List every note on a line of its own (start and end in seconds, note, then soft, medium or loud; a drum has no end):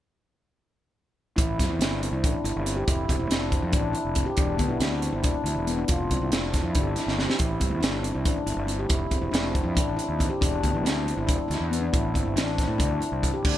1.36 1.57 A1 medium
1.36 1.58 E4 medium
1.36 kick loud
1.36 closed hi-hat medium
1.59 1.69 G2 medium
1.59 1.70 C4 medium
1.59 kick medium
1.59 snare soft
1.59 closed hi-hat medium
1.69 1.78 E2 medium
1.69 1.80 E4 medium
1.79 2.08 G1 medium
1.79 1.90 D4 medium
1.79 snare loud
1.79 closed hi-hat medium
1.91 2.00 C4 medium
2.01 2.12 C4 medium
2.01 closed hi-hat medium
2.12 2.24 C2 medium
2.12 2.23 E4 medium
2.24 2.33 A1 medium
2.24 2.45 D4 medium
2.24 kick loud
2.24 closed hi-hat medium
2.44 2.54 G1 medium
2.44 2.66 E4 medium
2.44 closed hi-hat medium
2.56 2.84 G1 medium
2.66 2.77 C4 medium
2.66 closed hi-hat medium
2.76 2.87 G4 medium
2.87 3.06 F1 medium
2.87 3.09 E4 medium
2.87 kick loud
2.87 closed hi-hat medium
3.08 3.19 E1 medium
3.08 3.20 C4 medium
3.08 kick medium
3.08 closed hi-hat medium
3.19 3.29 E1 medium
3.19 3.30 E4 medium
3.30 3.59 F1 medium
3.30 3.41 D4 medium
3.30 snare medium
3.30 closed hi-hat medium
3.41 3.51 C4 medium
3.52 3.63 C4 medium
3.52 kick medium
3.52 closed hi-hat medium
3.62 3.75 F2 medium
3.62 3.73 E4 medium
3.72 3.92 A1 medium
3.72 3.94 D4 medium
3.72 kick loud
3.72 closed hi-hat medium
3.93 4.16 E4 medium
3.93 closed hi-hat medium
4.05 4.24 F1 medium
4.15 4.27 C4 medium
4.15 kick medium
4.15 closed hi-hat medium
4.26 4.37 G4 medium
4.37 4.57 E1 medium
4.37 4.59 D4 medium
4.37 kick loud
4.37 closed hi-hat medium
4.58 4.70 D2 medium
4.58 4.70 B3 medium
4.58 kick medium
4.58 closed hi-hat medium
4.69 4.80 B1 medium
4.69 4.80 E4 medium
4.80 5.09 D2 loud
4.80 4.91 D4 medium
4.80 snare loud
4.80 closed hi-hat medium
4.91 5.01 C4 medium
5.02 5.13 C4 medium
5.02 closed hi-hat medium
5.13 5.24 G1 medium
5.13 5.24 E4 medium
5.23 5.34 E1 medium
5.23 5.45 D4 medium
5.23 kick loud
5.23 closed hi-hat medium
5.44 5.54 D2 medium
5.44 5.67 E4 medium
5.44 closed hi-hat medium
5.56 5.84 E1 medium
5.67 5.78 B3 medium
5.67 closed hi-hat medium
5.78 5.89 D4 medium
5.88 6.08 F1 medium
5.88 6.10 F4 medium
5.88 kick loud
5.88 closed hi-hat medium
6.11 6.20 C2 medium
6.11 6.21 C4 medium
6.11 kick medium
6.11 closed hi-hat medium
6.22 6.31 C2 medium
6.22 6.32 E4 medium
6.32 6.60 F1 medium
6.32 6.43 D4 medium
6.32 snare loud
6.32 closed hi-hat medium
6.42 6.52 C4 medium
6.53 6.64 C4 medium
6.53 kick medium
6.53 snare soft
6.53 closed hi-hat medium
6.63 6.77 F2 medium
6.63 6.75 E4 medium
6.75 6.94 G1 medium
6.75 6.97 D4 medium
6.75 kick loud
6.75 closed hi-hat medium
6.96 7.18 E4 medium
6.96 snare soft
6.96 closed hi-hat medium
7.06 7.26 G1 medium
7.06 snare medium
7.18 7.29 C4 medium
7.18 snare medium
7.28 7.39 G4 medium
7.28 snare medium
7.39 7.59 A1 medium
7.39 7.61 E4 medium
7.39 kick loud
7.39 closed hi-hat medium
7.60 7.72 G2 medium
7.60 7.71 C4 medium
7.60 kick medium
7.60 closed hi-hat medium
7.70 7.80 E2 medium
7.70 7.82 E4 medium
7.81 8.10 G1 medium
7.81 7.92 D4 medium
7.81 snare loud
7.81 closed hi-hat medium
7.93 8.02 C4 medium
8.03 8.14 C4 medium
8.03 closed hi-hat medium
8.14 8.26 C2 medium
8.14 8.25 E4 medium
8.25 8.35 A1 medium
8.25 8.47 D4 medium
8.25 kick loud
8.25 closed hi-hat medium
8.46 8.56 G1 medium
8.46 8.68 E4 medium
8.46 closed hi-hat medium
8.56 8.85 G1 medium
8.67 8.79 C4 medium
8.67 closed hi-hat medium
8.79 8.90 G4 medium
8.89 9.09 F1 medium
8.89 9.11 E4 medium
8.89 kick loud
8.89 closed hi-hat medium
9.11 9.20 E1 medium
9.11 9.22 C4 medium
9.11 kick medium
9.11 closed hi-hat medium
9.21 9.31 E1 medium
9.21 9.33 E4 medium
9.31 9.61 F1 medium
9.31 9.43 D4 medium
9.31 snare loud
9.31 closed hi-hat medium
9.43 9.52 C4 medium
9.53 9.65 C4 medium
9.53 kick medium
9.53 closed hi-hat medium
9.63 9.78 F2 medium
9.63 9.75 E4 medium
9.75 9.96 A1 medium
9.75 9.97 D4 medium
9.75 kick loud
9.75 closed hi-hat medium
9.97 10.19 E4 medium
9.97 closed hi-hat medium
10.09 10.28 D#2 medium
10.19 10.30 C4 medium
10.19 kick medium
10.19 closed hi-hat medium
10.30 10.41 G4 medium
10.41 10.61 E1 medium
10.41 10.63 D4 medium
10.41 kick loud
10.41 closed hi-hat medium
10.63 10.73 D2 medium
10.63 10.74 B3 medium
10.63 kick medium
10.63 closed hi-hat medium
10.72 10.82 B1 medium
10.72 10.85 E4 medium
10.83 11.12 D2 medium
10.83 10.95 D4 medium
10.83 closed hi-hat medium
10.87 snare loud
10.96 11.05 C4 medium
11.06 11.17 C4 medium
11.06 closed hi-hat medium
11.17 11.28 G1 medium
11.17 11.28 E4 medium
11.27 11.37 E1 medium
11.27 11.49 D4 medium
11.27 kick medium
11.27 closed hi-hat medium
11.48 11.59 D2 medium
11.48 11.70 E4 medium
11.48 snare soft
11.48 closed hi-hat medium
11.60 11.89 E2 medium
11.71 11.82 B3 medium
11.71 closed hi-hat medium
11.81 11.92 D4 medium
11.93 12.12 A1 medium
11.93 12.14 E4 medium
11.93 kick loud
11.93 closed hi-hat medium
12.14 12.24 G1 medium
12.14 12.25 C4 medium
12.14 kick medium
12.14 closed hi-hat soft
12.25 12.35 G1 medium
12.25 12.36 E4 medium
12.36 12.64 A1 medium
12.36 12.47 D4 medium
12.36 snare loud
12.36 closed hi-hat medium
12.46 12.56 C4 medium
12.57 12.68 C4 medium
12.57 kick medium
12.57 snare soft
12.57 closed hi-hat medium
12.68 12.82 A2 medium
12.68 12.79 E4 medium
12.78 12.98 D2 loud
12.78 13.00 D4 medium
12.78 kick loud
12.78 closed hi-hat medium
13.01 13.22 E4 medium
13.01 closed hi-hat medium
13.12 13.30 C2 medium
13.23 13.33 C4 medium
13.23 kick medium
13.23 closed hi-hat medium
13.34 13.44 G4 medium
13.45 13.58 D2 medium
13.45 13.58 D4 medium
13.45 kick loud
13.45 crash loud